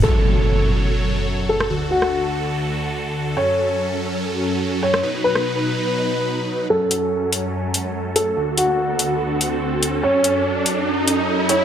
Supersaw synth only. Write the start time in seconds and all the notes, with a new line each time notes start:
0.03 F#2 F#3 A4 C#5
1.70 D2 D3 F#4
3.37 F#2 F#3 C#4
5.03 B2 D#4 B4
6.70 F#2 F#3 C#4 A4
8.37 D2 D3 F#4
10.03 F#2 F#3 C#4